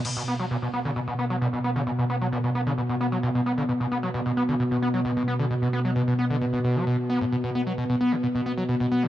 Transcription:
<<
  \new Staff \with { instrumentName = "Acid bass" } { \clef bass \time 4/4 \key b \minor \tempo 4 = 132 b,16 b,16 b16 fis16 b,16 b,16 b16 d16 b,16 b,16 b16 fis16 b,16 b,16 b16 d16 | b,16 b,16 b16 fis16 b,16 b,16 b16 d16 b,16 b,16 b16 fis16 b,16 b,16 b16 d16 | b,16 b,16 b16 fis16 b,16 b,16 b16 d16 b,16 b,16 b16 fis16 b,16 b,16 b16 d16 | b,16 b,16 b16 fis16 b,16 b,16 b16 d16 b,16 b,16 b,16 fis16 b,16 r16 b16 a,16 |
b,16 b,16 b16 fis16 b,16 b,16 b16 b,16 b,16 b,16 b16 fis16 b,16 b,16 b16 b,16 | }
  \new Staff \with { instrumentName = "Synth drone" } { \clef bass \time 4/4 \key b \minor b,1~ | b,1~ | b,1~ | b,1~ |
b,1 | }
  \new DrumStaff \with { instrumentName = "Drums" } \drummode { \time 4/4 cymc4 r4 r4 r4 | r4 r4 r4 r4 | r4 r4 r4 r4 | r4 r4 r4 r4 |
r4 r4 r4 r4 | }
>>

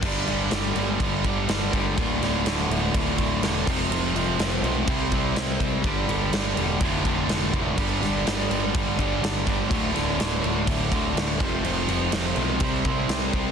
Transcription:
<<
  \new Staff \with { instrumentName = "Distorted electric guitar" } { \time 4/4 \key g \mixolydian \tempo 4 = 124 <g, d g b d' g'>2.~ <g, d g b d' g'>8 <g, d g b d' g'>8 | <d, a, d a f'>2.~ <d, a, d a f'>8 <f, c f a c' f'>8~ | <f, c f a c' f'>2 <c g c' e' g' c''>2 | <g, d g b d' g'>2 <d, a, d a f'>2 |
<g, d g b d' g'>2.~ <g, d g b d' g'>8 <g, d g b d' g'>8 | <d, a, d a f'>2.~ <d, a, d a f'>8 <f, c f a c' f'>8~ | <f, c f a c' f'>2 <c g c' e' g' c''>2 | }
  \new Staff \with { instrumentName = "Distorted electric guitar" } { \clef bass \time 4/4 \key g \mixolydian <g, d g>8 <g, d g>8 <g, d g>8 <g, d g>8 <g, d g>8 <g, d g>8 <g, d g>8 <g, d g>8 | <d, a, d>8 <d, a, d>8 <d, a, d>8 <d, a, d>8 <d, a, d>8 <d, a, d>8 <d, a, d>8 <f, c f>8 | <f, c f>8 <f, c f>8 <f, c f>8 <f, c f>8 <c g c'>8 <c g c'>8 <c g c'>8 <c g c'>8 | <g, d g>8 <g, d g>8 <g, d g>8 <g, d g>8 <d, a, d>8 <d, a, d>8 <d, a, d>8 <d, a, d>8 |
<g, d g>8 <g, d g>8 <g, d g>8 <g, d g>8 <g, d g>8 <g, d g>8 <g, d g>8 <g, d g>8 | <d, a, d>8 <d, a, d>8 <d, a, d>8 <d, a, d>8 <d, a, d>8 <d, a, d>8 <d, a, d>8 <f, c f>8 | <f, c f>8 <f, c f>8 <f, c f>8 <f, c f>8 <c g c'>8 <c g c'>8 <c g c'>8 <c g c'>8 | }
  \new Staff \with { instrumentName = "Overdriven electric guitar" } { \clef bass \time 4/4 \key g \mixolydian <g, d g>8 <g, d g>8 <g, d g>8 <g, d g>8 <g, d g>8 <g, d g>8 <g, d g>8 <g, d g>8 | <d, a, d>8 <d, a, d>8 <d, a, d>8 <d, a, d>8 <d, a, d>8 <d, a, d>8 <d, a, d>8 <f, c f>8 | <f, c f>8 <f, c f>8 <f, c f>8 <f, c f>8 <c g c'>8 <c g c'>8 <c g c'>8 <c g c'>8 | <g, d g>8 <g, d g>8 <g, d g>8 <g, d g>8 <d, a, d>8 <d, a, d>8 <d, a, d>8 <d, a, d>8 |
<g, d g>8 <g, d g>8 <g, d g>8 <g, d g>8 <g, d g>8 <g, d g>8 <g, d g>8 <g, d g>8 | <d, a, d>8 <d, a, d>8 <d, a, d>8 <d, a, d>8 <d, a, d>8 <d, a, d>8 <d, a, d>8 <f, c f>8 | <f, c f>8 <f, c f>8 <f, c f>8 <f, c f>8 <c g c'>8 <c g c'>8 <c g c'>8 <c g c'>8 | }
  \new Staff \with { instrumentName = "Picked electric bass" } { \clef bass \time 4/4 \key g \mixolydian g,,8 g,,8 g,,8 g,,8 g,,8 g,,8 g,,8 g,,8 | d,,8 d,,8 d,,8 d,,8 d,,8 d,,8 e,,8 f,,8 | f,,8 f,,8 f,,8 b,,8 c,8 c,8 c,8 c,8 | g,,8 g,,8 g,,8 e,,8 f,,8 f,,8 f,,8 f,,8 |
g,,8 g,,8 g,,8 g,,8 g,,8 g,,8 g,,8 g,,8 | d,,8 d,,8 d,,8 d,,8 d,,8 d,,8 d,,8 f,,8 | f,,8 f,,8 f,,8 b,,8 c,8 c,8 c,8 c,8 | }
  \new DrumStaff \with { instrumentName = "Drums" } \drummode { \time 4/4 <cymc bd>8 cymc8 <cymc sn>8 cymc8 <cymc bd>8 <cymc bd>8 <cymc sn>8 <cymc bd>8 | <cymc bd>8 <cymc sn>8 <cymc sn>8 cymc8 <cymc bd>8 <cymc bd>8 <cymc sn>8 <cymc bd>8 | cymc8 cymc8 <cymc sn>8 cymc8 <cymc bd>8 <cymc bd>8 <cymc sn>8 <cymc bd>8 | <cymc bd>8 cymc8 <cymc sn>8 cymc8 <cymc bd>8 <cymc bd>8 <cymc sn>8 <cymc bd>8 |
<cymc bd>8 <cymc sn>8 <cymc sn>8 cymc8 <cymc bd>8 <cymc bd>8 <cymc sn>8 <cymc bd>8 | <cymc bd>8 <cymc sn>8 <cymc sn>8 cymc8 <cymc bd>8 <cymc bd>8 <cymc sn>8 <cymc bd>8 | cymc8 cymc8 <cymc sn>8 cymc8 <cymc bd>8 <cymc bd>8 <cymc sn>8 <cymc bd>8 | }
>>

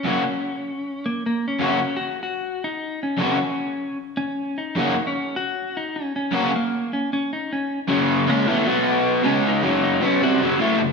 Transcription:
<<
  \new Staff \with { instrumentName = "Electric slide guitar" } { \time 4/4 \key fis \mixolydian \tempo 4 = 153 cis'2~ cis'8 ais8 ais8 cis'8 | cis'8. fis'8. fis'4 dis'4 cis'8 | cis'2 r8 cis'4 dis'8~ | dis'8. cis'8. fis'4 dis'8 cis'8 cis'8~ |
cis'8 ais4 cis'8 cis'8 dis'8 cis'8. r16 | r4 ais8 b2 cis'8 | dis'4 dis'8 cis'8 fis'4 r4 | }
  \new Staff \with { instrumentName = "Overdriven electric guitar" } { \clef bass \time 4/4 \key fis \mixolydian <fis, cis fis ais cis' fis'>8 r2. r8 | <fis, cis fis ais cis' fis'>8 r2. r8 | <fis, cis fis ais cis' fis'>8 r2. r8 | <fis, cis fis ais cis' fis'>8 r2. r8 |
<fis, cis fis ais cis' fis'>8 r2. r8 | <fis, cis fis>4 <cis gis cis'>8 <a, e a>8 <b, fis b>4. <cis gis cis'>8~ | <cis gis cis'>8 <fis, cis fis>4 <b, fis b>8 <bis, g bis>8 <fis, cis fis>8 <a, e a>8 <fis, cis>8 | }
>>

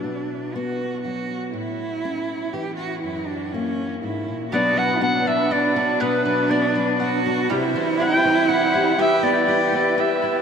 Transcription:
<<
  \new Staff \with { instrumentName = "Clarinet" } { \time 3/4 \key fis \phrygian \tempo 4 = 121 r2. | r2. | r2. | \key b \phrygian d''8 fis''8 fis''8 e''8 d''4 |
b'8 b'8 d''4. r8 | r4 g''4 fis''4 | e''8 d''4 d''8 e''8. r16 | }
  \new Staff \with { instrumentName = "Mandolin" } { \time 3/4 \key fis \phrygian r2. | r2. | r2. | \key b \phrygian <b fis''>8 b'8 d'8 b'8 fis''8 d'8 |
<b fis''>8 b'8 d'8 b'8 fis''8 d'8 | <g g''>8 c''8 e'8 c''4 e'8 | <b g''>8 b'8 e'8 b'8 g''8 e'8 | }
  \new Staff \with { instrumentName = "Accordion" } { \time 3/4 \key fis \phrygian r2. | r2. | r2. | \key b \phrygian b'2.~ |
b'2. | c''2. | b'2. | }
  \new Staff \with { instrumentName = "Accordion" } { \time 3/4 \key fis \phrygian r2. | r2. | r2. | \key b \phrygian <fis d'>2.~ |
<fis d'>2. | <g e'>2.~ | <g e'>2. | }
  \new Staff \with { instrumentName = "Cello" } { \time 3/4 \key fis \phrygian d'4 fis'4 fis'4 | e'2 g'8 fis'8 | e'8 d'8 cis'4 e'4 | \key b \phrygian fis'4 d'2 |
d'2 fis'4 | e'2. | g'4 g'4. r8 | }
  \new Staff \with { instrumentName = "Steel-string acoustic guitar" } { \time 3/4 \key fis \phrygian << { r4 b2 | r4 cis'2 | r4 ais2 | \key b \phrygian <fis b d' fis'>4 b4 d'8 fis'8 |
fis'4 b4 d'8 fis'8 | g'4 c'4 e'8 g'8 | g'4 e'4 g'8 g'8 | } \\ { b,2 fis4 | a,2 e4 | fis,2 gis,8 ais,8 | b,8 fis4 fis4. |
b,8 fis4 fis4. | c8 e4 e4. | e8 b4 b4. | } >> }
>>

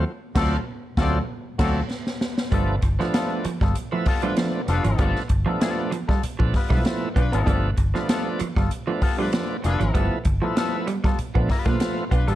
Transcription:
<<
  \new Staff \with { instrumentName = "Horn section" } { \time 4/4 \key g \mixolydian \tempo 4 = 97 r8 <fis' a' d''>8 r8 <fis' a' d''>8 r8 <fis' a' d''>8 r4 | r2 r8. <d' f' b'>16 r8 <d' f' b'>8~ | <d' f' b'>16 r2 r8 <d' f' b'>16 r8 <d' f' b'>8~ | <d' f' b'>16 r2 r8 <d' f' b'>16 r8 <d' f' b'>8~ |
<d' f' b'>16 r2 r8 <d' f' b'>16 r8 <d' f' b'>8 | }
  \new Staff \with { instrumentName = "Clean electric guitar" } { \time 4/4 \key g \mixolydian r8 <fis c' eis' a'>8 r8 <fis c' eis' a'>8 r8 <fis c' eis' a'>8 r4 | <g b f' a'>16 r8 <g b f' b'>16 <g b f' a'>16 r8 <g b f' a'>16 r8 <g b f' a'>16 r8. <g b f' a'>16 r16 | <g b f' a'>16 r8 <g b f' a'>16 <g b f' a'>16 r8 <g b f' a'>16 r8 <g b f' b'>16 <g b f' b'>16 r8. <g b f' a'>16 | <g b f' a'>16 r8 <g b f' b'>16 <g b f' a'>16 r8 <g b f' a'>16 r8 <g b f' a'>16 r8. <g b f' a'>16 r16 |
<g b f' a'>16 r8 <g b f' a'>16 <g b f' a'>16 r8 <g b f' a'>16 r8 <g b f' b'>16 r4 <g b f' a'>16 | }
  \new Staff \with { instrumentName = "Tonewheel organ" } { \time 4/4 \key g \mixolydian r8 <fis a c' eis'>8 r8 <fis a c' eis'>8 r8 <fis a c'>8 r4 | <f a b d'>8 r16 <f a b d'>8. r8. <f a b e'>16 r16 <f a b d'>8. r8 | <f a b d'>8 r16 <f a b d'>8. r8. <f a b d'>16 r16 <f a b e'>8. r8 | <f a b d'>8 r16 <f a b d'>8. r8. <f a b d'>16 r16 <f a b d'>8. r8 |
<f a b e'>8 r16 <f a b e'>8. r8. <f a b d'>16 r16 <f a b f'>8. r8 | }
  \new Staff \with { instrumentName = "Clean electric guitar" } { \clef bass \time 4/4 \key g \mixolydian r1 | g16 r8 f16 r8 f16 g16 r16 f16 r16 g16 f16 r8 f16 | g16 r8 f16 r8 f16 g16 r16 f16 r16 g16 r8 b16 b16 | g16 r8 f16 r8 f16 g16 r16 f16 r16 g16 f16 r8 f16 |
g16 r8 f16 r8 g16 g16 r16 b16 r16 bes16 r8 b16 g16 | }
  \new Staff \with { instrumentName = "Fingered electric bass" } { \clef bass \time 4/4 \key g \mixolydian r8 d,8 r8 d,8 r8 d,8 r4 | g,,8 g,,16 r4 g,,16 r4. f,,16 aes,,16 | g,,16 r16 g,,16 r4. bes,,16 r16 b,,16 r8 b,,16 aes,,16 | g,,8 g,,16 r4 g,,16 r4. f,,16 aes,,16 |
g,,16 r16 g,,16 r4. bes,,16 r16 b,,16 r8 b,,16 aes,,16 | }
  \new DrumStaff \with { instrumentName = "Drums" } \drummode { \time 4/4 r8 <cymc bd sn>8 r8 <bd sn>8 r8 <cymc bd sn>8 sn16 sn16 sn16 sn16 | <hh bd>8 <hh bd>16 sn16 <hh sn>8 hh16 <bd sn>16 hh8 <hho bd>16 hh16 <hh sn>8 <hh sn>16 hh16 | <hh bd>16 sn16 <hh bd>8 <hh sn>8 hh16 <bd sn>16 hh16 bd16 <hho bd sn>16 <bd sn>16 <hh sn>8 <hh bd>16 hh16 | <hh bd>8 <hh bd>16 sn16 <hh sn>8 hh16 <bd sn>16 hh8 <hho bd>8 <hh sn>8 <hh sn>16 hh16 |
<hh bd>8 <hh bd>8 <hh sn>8 hh16 <bd sn>16 hh16 bd16 <hho bd sn>16 <hh bd sn>16 <hh sn>8 <hh bd>16 hh16 | }
>>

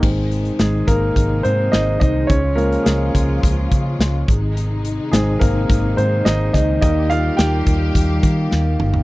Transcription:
<<
  \new Staff \with { instrumentName = "Grand piano" } { \time 4/4 \key aes \major \tempo 4 = 106 r4 <aes aes'>8 <bes bes'>4 <c' c''>8 <ees' ees''>8 <ees' ees''>8 | <des' des''>8 <bes bes'>8 <aes aes'>4. r4. | r4 aes'8 <bes bes'>4 <c' c''>8 <ees' ees''>8 <ees' ees''>8 | <ees' ees''>8 <f' f''>8 <g' g''>4. r4. | }
  \new Staff \with { instrumentName = "Grand piano" } { \clef bass \time 4/4 \key aes \major <ees aes c'>1 | r8 <f aes des'>4. r2 | r4 <ees aes c'>8 r2 r8 | <ees g bes>8 r2. r8 | }
  \new Staff \with { instrumentName = "String section" } { \clef bass \time 4/4 \key aes \major << { <c ees ees'>1 | <des f f'>2.~ <des f f'>8 <c ees ees'>8~ | <c ees ees'>1 | <g g'>1 | } \\ { aes1~ | aes1~ | aes1 | bes1 | } >> }
  \new Staff \with { instrumentName = "Fingered electric bass" } { \clef bass \time 4/4 \key aes \major aes,,4 aes,,8 aes,,8 aes,,8 aes,8 aes,,8 c,8 | des,4 des,8 des,8 des,8 des8 des,8 aes,,8~ | aes,,4 aes,,8 aes,,8 aes,,8 aes,8 aes,,8 des,8 | ees,4 ees,8 ees,8 ees,8 ees8 ees,8 g,,8 | }
  \new DrumStaff \with { instrumentName = "Drums" } \drummode { \time 4/4 <cymc bd>8 hh16 hh16 <hh sn>8 <hh bd>8 <hh bd>8 hh8 <hh sn>8 <hh bd>8 | <hh bd>8 hh16 hh16 <hh sn>8 <hh bd>8 <hh bd>8 <hh bd>8 <hh sn>8 <hh bd>8 | hh8 hh8 <hh sn>8 <hh bd>8 <hh bd>8 hh8 <hh sn>8 <hh bd sn>8 | <hh bd>8 hh8 <hh sn>8 <hh bd>8 <hh bd>8 <hh bd>8 sn8 toml16 tomfh16 | }
>>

